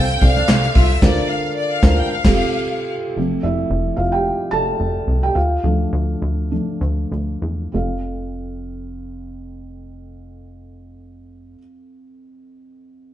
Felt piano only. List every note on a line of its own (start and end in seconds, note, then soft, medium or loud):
0.00 1.04 C3 medium
0.00 0.22 A4 loud
0.00 0.22 C5 medium
0.00 0.49 F5 loud
0.22 0.47 A4 medium
0.22 0.47 C5 medium
0.22 0.47 D5 medium
0.49 0.99 A4 medium
0.49 0.99 C5 medium
0.49 0.99 F5 medium
1.03 1.21 D3 medium
1.03 1.21 D4 loud
1.03 1.21 F4 loud
1.03 1.21 A#4 loud
1.03 1.21 C5 loud
1.03 1.21 F5 loud
1.83 2.02 D4 medium
1.83 2.02 F4 loud
1.83 2.02 A#4 loud
1.83 2.02 C5 loud
1.83 2.02 F5 loud
2.24 2.42 C3 medium
2.24 2.42 C4 loud
2.24 2.42 F4 medium
2.24 2.42 G4 loud
2.24 2.42 A4 loud
2.24 2.42 F5 loud
3.17 5.32 F3 soft
3.17 5.32 A3 soft
3.17 5.32 C4 soft
3.43 3.95 E4 medium
3.43 3.99 E5 medium
3.96 4.04 F4 medium
3.96 4.01 F5 medium
4.12 4.50 G4 medium
4.12 4.53 G5 medium
4.51 5.20 A4 medium
4.51 5.25 A5 loud
5.23 5.36 G4 medium
5.23 5.36 G5 medium
5.35 7.08 F4 medium
5.35 7.07 F5 medium
5.64 6.49 F3 soft
5.64 6.50 A3 soft
5.64 6.50 D4 soft
6.51 6.78 F3 soft
6.51 6.78 A3 soft
6.51 6.78 D4 soft
7.72 11.57 F2 medium
7.72 11.55 C4 medium
7.72 11.56 F4 soft
7.72 11.57 A4 medium
7.72 11.58 F5 medium